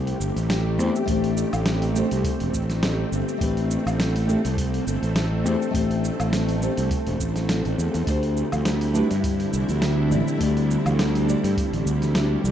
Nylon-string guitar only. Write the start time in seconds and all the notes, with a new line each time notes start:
0.78 A3 C4 D4 G4 C5
1.06 A3 C4 D4
1.10 G4 C5
1.93 A3 C4 D4
1.97 G4 C5
3.38 A3 C4 D4
3.42 G4 B4
4.26 A3 C4 D4 G4 A4
5.44 A3 C4 D4 G4 C5
5.71 A3 C4 D4
5.75 G4 C5
6.58 A3 C4 D4
6.63 G4 C5
8.04 A3 D4 E4
8.09 G4 C5
8.93 A3 D4 E4 G4 B4
10.09 A3 D4 E4 G4 D5
10.38 A3 D4 E4
10.42 G4 D5
11.25 A3 D4 E4
11.29 G4 D5